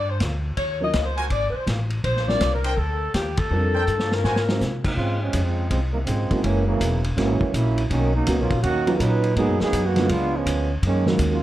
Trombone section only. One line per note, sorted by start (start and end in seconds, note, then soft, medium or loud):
4.84 4.97 F#3 medium
4.84 4.97 A#3 medium
4.84 4.95 C4 medium
4.84 4.97 D#4 medium
4.96 5.19 G#3 medium
4.96 5.20 C4 medium
4.96 5.19 C#4 medium
4.96 5.19 F4 medium
5.21 5.46 C3 medium
5.21 5.44 F3 medium
5.21 5.44 G#3 medium
5.21 5.46 C#4 medium
5.45 5.68 C#3 medium
5.45 5.68 F3 medium
5.45 5.69 G#3 medium
5.45 5.68 C4 medium
5.69 5.80 C#3 medium
5.69 5.80 F3 medium
5.69 5.81 G#3 medium
5.69 5.81 C4 medium
5.92 5.99 C3 medium
5.92 5.99 D#3 medium
5.92 5.99 G3 medium
5.92 5.99 A#3 medium
6.06 6.41 C#3 medium
6.06 6.40 F3 medium
6.06 6.41 G#3 medium
6.06 6.41 C4 medium
6.43 6.66 E3 medium
6.43 6.66 F#3 medium
6.43 6.66 A#3 medium
6.43 6.66 C#4 medium
6.68 7.02 C#3 medium
6.68 7.02 E3 medium
6.68 7.02 F#3 medium
6.68 7.02 A#3 medium
7.16 7.51 E3 medium
7.16 7.51 F#3 medium
7.16 7.51 A#3 medium
7.16 7.51 C#4 loud
7.53 7.84 F#3 medium
7.53 7.84 A#3 medium
7.53 7.84 C#4 medium
7.53 7.84 E4 loud
7.90 8.13 D#3 medium
7.90 8.13 F#3 medium
7.90 8.13 A#3 medium
7.90 8.13 C#4 loud
8.15 8.38 F#3 medium
8.15 8.38 A#3 medium
8.15 8.37 C#4 medium
8.15 8.38 D#4 loud
8.39 8.62 F#3 medium
8.39 8.62 A#3 medium
8.39 8.61 C#4 medium
8.39 8.62 F4 medium
8.63 8.93 D#3 medium
8.63 8.93 A#3 medium
8.63 8.93 C#4 medium
8.63 8.93 F#4 loud
8.95 9.00 A#4 medium
9.00 9.36 F#3 medium
9.00 9.37 C#4 medium
9.00 9.36 D#4 medium
9.00 9.37 B4 loud
9.37 9.60 F#3 medium
9.37 9.60 B3 medium
9.37 9.60 D#4 medium
9.37 9.60 G#4 loud
9.62 9.84 F#3 medium
9.62 9.84 B3 medium
9.62 9.84 D#4 medium
9.62 9.84 G#4 loud
9.86 10.11 D#3 medium
9.86 10.10 A#3 medium
9.86 10.09 B3 medium
9.86 10.10 F#4 medium
10.10 10.34 G#3 medium
10.10 10.34 B3 medium
10.10 10.34 D4 medium
10.10 10.34 F4 loud
10.35 10.71 F3 medium
10.35 10.71 G#3 medium
10.35 10.71 B3 medium
10.35 10.71 C#4 medium
10.85 11.07 D#3 medium
10.85 11.06 G#3 medium
10.85 11.07 A#3 medium
10.85 11.06 C#4 medium
11.32 11.43 F#3 medium
11.32 11.43 A#3 medium
11.32 11.43 C#4 medium
11.32 11.43 F4 medium